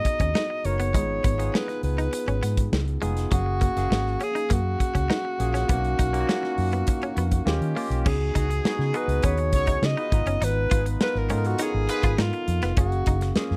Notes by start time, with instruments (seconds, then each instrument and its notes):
Already playing: tine electric piano B3 D#4 F#4 G#4 A#5, alto saxophone D#5
0.05 muted clean electric guitar stroke, kick, closed hi-hat
0.20 fingered electric bass D#2, clean electric guitar C#4, kick, closed hi-hat
0.35 clean electric guitar D#4, snare
0.50 muted clean electric guitar stroke
0.65 fingered electric bass F#1, tine electric piano B3 D#4 F#4 A#4, alto saxophone C#5, closed hi-hat
0.80 clean electric guitar B3, closed hi-hat
0.93 fingered electric bass G#1, clean electric guitar G#3, tine electric piano B3 D#4 F4 G#4, kick, closed hi-hat
1.24 fingered electric bass G#1, clean electric guitar B3, kick, closed hi-hat
1.38 tine electric piano B3 D#4 F4 G#4, muted clean electric guitar stroke, closed hi-hat
1.54 clean electric guitar C#4, alto saxophone B4, snare
1.68 muted clean electric guitar stroke, snare, closed hi-hat
1.83 fingered electric bass C#2, alto saxophone B4, closed hi-hat
1.98 clean electric guitar D#4, closed hi-hat
2.13 muted clean electric guitar stroke, closed hi-hat
2.28 fingered electric bass G#1, clean electric guitar C#4, closed hi-hat
2.43 fingered electric bass G#2, clean electric guitar B3, closed hi-hat
2.57 kick, closed hi-hat
2.72 fingered electric bass C#2, snare
2.88 closed hi-hat
3.02 fingered electric bass F1, clean electric guitar G#3, tine electric piano B3 D#4 F4 G#4, closed hi-hat
3.17 snare, closed hi-hat
3.31 fingered electric bass F#1, clean electric guitar F#3, tine electric piano A#3 C#4 G#4 F5, alto saxophone F#4, kick, closed hi-hat
3.46 muted clean electric guitar stroke
3.61 clean electric guitar A#3, kick, closed hi-hat
3.76 fingered electric bass F#1, tine electric piano A#3 C#4 G#4 F5, snare, closed hi-hat
3.91 fingered electric bass G#1, muted clean electric guitar stroke, snare
4.07 snare
4.20 clean electric guitar C#4, alto saxophone G#4, closed hi-hat
4.35 clean electric guitar D#4, closed hi-hat
4.50 fingered electric bass F#2, clean electric guitar A#3, alto saxophone F#4, kick, closed hi-hat
4.80 muted clean electric guitar stroke, kick, closed hi-hat
4.95 fingered electric bass C#2, clean electric guitar C#4, kick, closed hi-hat
5.10 clean electric guitar D#4, snare
5.25 muted clean electric guitar stroke
5.39 fingered electric bass A#1, tine electric piano A#3 C#4 F4 G#4, closed hi-hat
5.54 clean electric guitar C#4, snare, closed hi-hat
5.68 fingered electric bass B1, tine electric piano A#3 C#4 D#4 F#4, clean electric guitar B3, kick, closed hi-hat
5.84 closed hi-hat
5.99 fingered electric bass B1, clean electric guitar D#4, kick, closed hi-hat
6.13 tine electric piano A#3 C#4 D#4 F4, muted clean electric guitar stroke, closed hi-hat
6.20 tine electric piano F#4
6.29 clean electric guitar C#4, snare
6.43 muted clean electric guitar stroke, snare
6.58 fingered electric bass F#2, open hi-hat
6.73 clean electric guitar B3, closed hi-hat
6.87 muted clean electric guitar stroke, kick, closed hi-hat
7.02 clean electric guitar C#4, closed hi-hat
7.17 fingered electric bass F2, clean electric guitar B3, closed hi-hat
7.31 kick, closed hi-hat
7.45 fingered electric bass D#2, tine electric piano A#3 C#4 F4 G4 D#5, alto saxophone G4, snare
7.61 fingered electric bass D#3, closed hi-hat
7.75 tine electric piano A#3 C#4 F4 G4 G5, clean electric guitar A#3, open hi-hat
7.90 fingered electric bass B1, closed hi-hat
8.05 fingered electric bass C#2, tine electric piano B3 D#4 F#4 G#4, clean electric guitar C#4, alto saxophone G#4, kick, crash
8.35 fingered electric bass C#2, horn section F#3 B3 D#4 F#4, clean electric guitar D#4, kick, closed hi-hat
8.50 horn section G#3 B3 D#4 G#4, muted clean electric guitar stroke, closed hi-hat
8.64 tine electric piano B3 D#4 F#4 G#4, muted fingered electric bass stroke, snare
8.79 fingered electric bass C#3, snare
8.94 tine electric piano B3 D#4 F#4 G#4, clean electric guitar B3, alto saxophone B4, closed hi-hat
9.08 fingered electric bass C#2, closed hi-hat
9.22 fingered electric bass D#2, horn section B3 F#4 G#4 B4, clean electric guitar C#4, alto saxophone C#5, kick, closed hi-hat
9.38 muted clean electric guitar stroke, closed hi-hat
9.53 fingered electric bass C#2, horn section C#4 F#4 G#4 C#5, kick, closed hi-hat
9.67 clean electric guitar D#4, kick, closed hi-hat
9.82 fingered electric bass C#3, alto saxophone D#5, snare
9.97 horn section B3 D#4 F4 B4, clean electric guitar D#4, closed hi-hat
10.12 fingered electric bass G#1, tine electric piano B3 D#4 F4 A#5, muted clean electric guitar stroke, kick, closed hi-hat
10.26 fingered electric bass F#1, clean electric guitar C#4, closed hi-hat
10.42 fingered electric bass G#1, clean electric guitar D#4, alto saxophone B4, closed hi-hat
10.70 fingered electric bass G#1, horn section G#3 D#4 F4 G#4, clean electric guitar F4, kick, closed hi-hat
10.85 horn section B3 D#4 F4 B4, muted clean electric guitar stroke, closed hi-hat
11.01 tine electric piano B3 D#4 F4 A#4, alto saxophone B4, snare
11.15 fingered electric bass G#1, alto saxophone A#4, snare
11.29 fingered electric bass G#2, tine electric piano B3 D#4 F4 A4, clean electric guitar C#4, closed hi-hat
11.38 tine electric piano A#4
11.45 alto saxophone F#4, closed hi-hat
11.59 horn section C#4 F#4 A#4 C#5, clean electric guitar D#4, alto saxophone G#4, closed hi-hat
11.74 fingered electric bass G#1
11.89 horn section B3 D#4 F4 B4, muted clean electric guitar stroke, closed hi-hat
12.03 fingered electric bass G#1, clean electric guitar F4, kick, closed hi-hat
12.18 fingered electric bass G#2, clean electric guitar D#4, alto saxophone F4, snare
12.33 muted clean electric guitar stroke, closed hi-hat
12.48 fingered electric bass F2, closed hi-hat
12.62 fingered electric bass F1, clean electric guitar B3, snare, closed hi-hat
12.77 fingered electric bass F#1, tine electric piano A#3 C#4 G#4 F5, clean electric guitar C#4, alto saxophone F#4, kick, closed hi-hat
12.92 closed hi-hat
13.06 fingered electric bass F#1, clean electric guitar D#4, kick, closed hi-hat
13.21 muted clean electric guitar stroke, snare, closed hi-hat
13.36 tine electric piano A#3 C#4 F4 G#4, snare
13.51 fingered electric bass F#2, snare